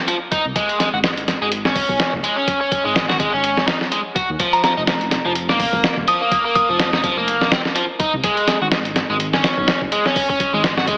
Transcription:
0.08 0.16 F3 medium
0.08 closed hi-hat medium
0.32 0.44 D#4 loud
0.32 kick loud
0.32 closed hi-hat medium
0.45 0.52 C2 medium
0.56 0.79 G#3 medium
0.56 kick loud
0.56 closed hi-hat medium
0.69 closed hi-hat soft
0.80 0.88 G#3 medium
0.80 snare soft
0.80 closed hi-hat medium
0.93 1.33 G#1 loud
0.93 0.98 F#4 medium
1.04 1.09 G#3 medium
1.04 snare loud
1.04 closed hi-hat medium
1.17 closed hi-hat soft
1.28 snare soft
1.28 closed hi-hat medium
1.41 1.81 G#1 medium
1.41 1.48 G#3 medium
1.52 closed hi-hat medium
1.65 2.12 C#4 medium
1.65 snare soft
1.76 kick medium
1.76 open hi-hat medium
1.89 2.03 B1 medium
1.89 kick medium
2.00 snare loud
2.00 closed hi-hat medium
2.13 2.20 F#1 loud
2.13 kick loud
2.24 2.37 G#3 medium
2.24 closed hi-hat medium
2.37 2.60 C#4 medium
2.48 kick loud
2.48 closed hi-hat medium
2.61 2.84 C#4 medium
2.72 kick medium
2.72 closed hi-hat medium
2.85 3.25 G#1 loud
2.85 2.94 G#3 medium
2.95 3.04 G#3 medium
2.95 snare loud
2.95 closed hi-hat medium
3.09 3.16 F#4 medium
3.09 snare medium
3.19 3.32 G#3 medium
3.19 kick medium
3.19 closed hi-hat medium
3.33 3.73 G#1 medium
3.33 3.67 C#4 medium
3.44 closed hi-hat medium
3.57 snare medium
3.67 3.76 D#4 medium
3.67 snare loud
3.67 closed hi-hat medium
3.81 snare soft
3.92 4.00 G#3 medium
3.92 closed hi-hat medium
4.16 4.28 F#4 loud
4.16 kick medium
4.16 closed hi-hat medium
4.29 4.36 D#2 medium
4.40 4.62 F3 medium
4.40 kick loud
4.40 closed hi-hat medium
4.53 4.60 A#5 medium
4.53 closed hi-hat soft
4.64 4.72 F3 medium
4.64 4.73 A#5 medium
4.64 snare soft
4.64 closed hi-hat medium
4.77 5.17 F1 loud
4.77 4.81 D#4 medium
4.87 4.93 F3 medium
4.87 snare loud
4.87 closed hi-hat medium
5.01 closed hi-hat soft
5.11 snare soft
5.11 closed hi-hat medium
5.25 5.65 F1 medium
5.25 5.32 F3 medium
5.35 closed hi-hat medium
5.49 5.96 A#3 medium
5.49 snare soft
5.60 kick medium
5.60 open hi-hat medium
5.73 5.87 G#1 loud
5.73 kick loud
5.84 snare loud
5.84 closed hi-hat medium
5.97 6.04 D#1 loud
5.97 kick loud
6.08 6.20 F3 medium
6.08 6.46 D#6 medium
6.08 closed hi-hat medium
6.21 6.44 A#3 medium
6.32 kick loud
6.32 closed hi-hat medium
6.45 6.68 A#3 medium
6.55 6.93 D#6 medium
6.55 kick medium
6.55 closed hi-hat medium
6.69 7.09 F1 loud
6.69 6.78 F3 medium
6.79 6.88 F3 medium
6.79 snare loud
6.79 closed hi-hat medium
6.93 7.00 D#4 medium
6.93 snare medium
7.04 7.16 F3 medium
7.04 kick medium
7.04 closed hi-hat medium
7.17 7.57 F1 medium
7.17 7.51 A#3 medium
7.28 closed hi-hat medium
7.41 snare medium
7.52 7.60 C4 medium
7.52 snare loud
7.52 closed hi-hat medium
7.65 snare soft
7.75 7.84 F3 medium
7.75 closed hi-hat medium
8.00 8.12 D#4 loud
8.00 kick medium
8.00 closed hi-hat medium
8.13 8.20 C2 medium
8.24 8.47 G#3 medium
8.24 kick loud
8.24 closed hi-hat medium
8.37 closed hi-hat soft
8.47 8.56 G#3 medium
8.47 snare soft
8.47 closed hi-hat medium
8.61 9.01 G#1 loud
8.61 8.66 F#4 medium
8.72 8.77 G#3 medium
8.72 snare loud
8.72 closed hi-hat medium
8.85 closed hi-hat soft
8.96 snare medium
8.96 closed hi-hat medium
9.09 9.49 G#1 medium
9.09 9.16 G#3 medium
9.20 closed hi-hat medium
9.33 9.80 C#4 medium
9.33 snare medium
9.44 snare loud
9.44 closed hi-hat medium
9.57 9.71 B1 loud
9.57 kick loud
9.68 snare loud
9.68 closed hi-hat medium
9.81 9.88 F#1 loud
9.81 kick loud
9.92 10.05 G#3 medium
9.92 closed hi-hat medium
10.06 10.28 C#4 medium
10.06 snare soft
10.16 kick medium
10.16 open hi-hat medium
10.29 10.52 C#4 medium
10.29 kick medium
10.40 kick medium
10.40 closed hi-hat medium
10.53 10.93 G#1 loud
10.53 10.63 G#3 medium
10.64 10.73 G#3 medium
10.64 snare loud
10.64 closed hi-hat medium
10.77 10.84 F#4 medium
10.77 snare medium
10.87 10.97 G#3 medium
10.87 kick medium
10.87 closed hi-hat medium

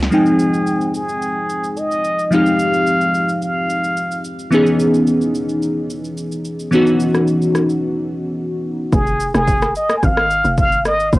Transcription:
0.00 0.10 C#2 loud
0.00 snare medium
0.10 2.27 F3 medium
0.10 2.28 G#3 medium
0.10 2.28 C4 medium
0.10 2.29 D#4 medium
0.10 0.91 G#4 medium
0.10 2.29 G5 medium
0.10 shaker medium
0.26 shaker soft
0.39 shaker medium
0.54 shaker medium
0.67 shaker medium
0.81 shaker soft
0.94 1.80 G#4 medium
0.94 shaker medium
1.09 shaker soft
1.22 shaker medium
1.50 shaker medium
1.64 shaker soft
1.77 2.35 D#5 medium
1.77 shaker medium
1.91 shaker medium
2.04 shaker medium
2.19 shaker soft
2.31 4.47 F3 medium
2.31 4.48 G#3 medium
2.31 4.48 C4 medium
2.31 4.49 D#4 medium
2.31 4.49 G4 medium
2.31 3.43 F5 loud
2.31 shaker medium
2.46 shaker soft
2.59 shaker medium
2.74 shaker medium
2.87 shaker medium
3.01 shaker soft
3.15 shaker medium
3.29 shaker medium
3.42 4.21 F5 medium
3.42 shaker medium
3.70 shaker medium
3.84 shaker soft
3.97 shaker medium
4.12 shaker medium
4.25 shaker medium
4.39 shaker soft
4.51 6.68 E3 medium
4.51 6.68 B3 medium
4.51 6.69 C#4 medium
4.51 6.69 D#4 medium
4.51 6.69 G#4 medium
4.51 shaker medium
4.66 shaker soft
4.80 shaker medium
4.94 shaker medium
5.07 shaker medium
5.22 shaker soft
5.35 shaker medium
5.49 shaker medium
5.62 shaker medium
5.90 shaker medium
6.04 shaker soft
6.17 shaker medium
6.32 shaker medium
6.45 shaker medium
6.59 shaker soft
6.71 8.88 E3 medium
6.71 8.88 B3 medium
6.71 8.89 C#4 medium
6.71 8.89 D#4 medium
6.71 8.90 F#4 medium
6.71 shaker medium
6.87 shaker medium
7.00 shaker medium
7.14 cross-stick medium
7.14 shaker medium
7.27 shaker medium
7.42 shaker soft
7.55 cross-stick medium
7.55 shaker medium
7.69 shaker medium
8.93 9.32 F1 loud
8.93 9.32 G#4 loud
8.93 kick loud
8.93 shaker medium
9.07 shaker medium
9.20 shaker loud
9.34 9.73 F1 loud
9.34 9.73 G#4 medium
9.34 cross-stick medium
9.34 shaker medium
9.48 kick loud
9.48 shaker medium
9.62 cross-stick loud
9.62 shaker soft
9.75 9.95 D#5 loud
9.75 shaker medium
9.89 cross-stick loud
9.89 shaker medium
9.97 10.05 G#5 medium
10.03 10.42 G#1 loud
10.03 10.58 F5 loud
10.03 kick loud
10.03 shaker medium
10.17 cross-stick loud
10.30 shaker medium
10.44 10.87 F1 medium
10.44 shaker medium
10.58 10.84 F5 loud
10.58 kick loud
10.58 shaker medium
10.72 shaker medium
10.85 11.11 G#1 loud
10.85 11.16 D#5 loud
10.85 cross-stick medium
10.85 shaker medium
11.00 shaker medium
11.13 11.19 F1 loud
11.13 11.19 C5 loud
11.13 kick loud
11.13 shaker medium

